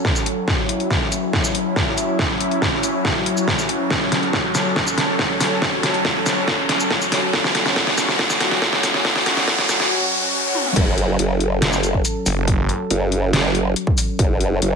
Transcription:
Already playing: F#3 C#4 A4, riser
0.05 kick, snare
0.16 shaker
0.26 closed hi-hat
0.48 E4, kick, snare
0.69 closed hi-hat
0.80 closed hi-hat
0.90 kick, snare
1.12 closed hi-hat, shaker
1.33 kick, snare
1.44 shaker
1.55 closed hi-hat
1.76 kick, snare
1.98 closed hi-hat, shaker
2.19 kick, snare
2.41 closed hi-hat
2.51 closed hi-hat
2.62 kick, snare
2.83 closed hi-hat, shaker
3.05 kick, snare
3.26 closed hi-hat
3.37 shaker
3.48 kick, snare
3.59 shaker
3.69 closed hi-hat
3.90 A4, kick, snare
4.12 snare, closed hi-hat
4.23 closed hi-hat
4.33 kick, snare
4.55 snare, closed hi-hat, shaker
4.76 kick, snare
4.87 shaker
4.98 snare, closed hi-hat
5.19 kick, snare
5.40 snare, open hi-hat, shaker
5.62 kick, snare
5.83 snare, closed hi-hat
5.94 closed hi-hat
6.05 kick, snare
6.26 snare, closed hi-hat, shaker
6.48 kick, snare
6.69 snare, closed hi-hat
6.80 shaker
6.91 kick, snare
7.01 shaker
7.12 snare, open hi-hat
7.33 F#4, kick, snare
7.44 snare
7.55 snare, closed hi-hat
7.66 snare, closed hi-hat
7.76 kick, snare
7.87 snare
7.98 snare, closed hi-hat, shaker
8.09 snare
8.19 kick, snare
8.30 snare, shaker
8.40 snare, closed hi-hat
8.51 snare
8.62 kick, snare
8.73 snare
8.83 snare, open hi-hat, shaker
8.94 snare
9.05 kick, snare
9.16 snare
9.26 snare, closed hi-hat
9.37 snare, closed hi-hat
9.48 kick, snare
9.59 snare
9.69 snare, closed hi-hat, shaker
9.80 snare
10.55 high tom
10.66 mid tom
10.76 F#1 F#3 C#4 A4, kick, closed hi-hat, crash
10.98 closed hi-hat
11.19 F#1, closed hi-hat
11.40 closed hi-hat
11.62 snare, closed hi-hat
11.73 shaker
11.83 closed hi-hat, shaker
11.94 kick
12.05 closed hi-hat, shaker
12.26 F#1, open hi-hat, shaker
12.48 kick, closed hi-hat
12.69 closed hi-hat
12.90 F#1, closed hi-hat
13.12 closed hi-hat
13.33 snare, closed hi-hat
13.55 closed hi-hat
13.76 closed hi-hat
13.87 kick
13.98 open hi-hat, shaker
14.19 F#1 C#5, kick, closed hi-hat
14.41 closed hi-hat
14.62 F#1, closed hi-hat

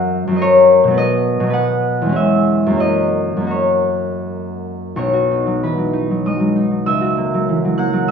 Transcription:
Already playing: F#2 F#3 C#4 A#4 F#5
0.28 F#2 F#3
0.35 C#4 A#4 D#5
0.42 C#5
0.84 B2 F#3
0.91 B3 B4
0.98 D#5
1.40 B2 F#3
1.47 B3 B4
1.53 F#5
2.02 E2 G#3
2.09 C#4 G#4
2.16 E5
2.67 F#2 A#3
2.74 C#4 F#4
2.80 D#5
3.37 F#2 A#3
3.44 C#4 F#4
3.51 C#5
4.96 B1 C#5 C#6
5.13 F#4
5.31 D#4
5.47 F#3
5.63 E3 B4 B5
5.78 F#3
5.93 D#4
6.11 F#3
6.26 G#3 D#5 D#6
6.40 F#3
6.56 D#4
6.71 F#3
6.86 C#2 E5 E6
7.01 F#4
7.17 A#3
7.34 F#3
7.49 E3
7.65 F#3
7.78 A#3 F#5 F#6
7.93 F#3
8.08 G#3 E6

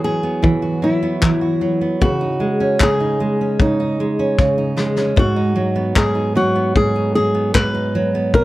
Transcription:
Already playing: E3 B3 F#4
0.04 F#3 G#4
0.23 B3
0.42 E3, kick
0.62 F#4
0.82 F#3 E4
1.03 B3
1.22 E3, kick, clap
1.41 F#4
1.61 F#3
1.81 B3
2.01 C#3 F#4, kick
2.21 D#4
2.40 G#3
2.60 C#4
2.80 C#3 G#4, kick, clap
3.00 D#4
3.20 G#3
3.41 C#4
3.60 C#3 D#4, kick
3.80 D#4
4.00 G#3
4.19 C#4
4.38 C#3, kick, snare
4.58 D#4
4.77 G#3, snare
4.96 C#4, snare
5.16 G#2 F#4, kick
5.36 D#4
5.56 F#3
5.76 B3
5.96 G#2 G#4, kick, clap
6.15 D#4
6.35 F#3 F#4
6.55 B3
6.76 G#2 G#4, kick
6.96 D#4
7.15 F#3 G#4
7.34 B3
7.54 G#2 B4, kick, clap
7.75 D#4
7.95 F#3
8.15 B3
8.34 B2 A#4, kick

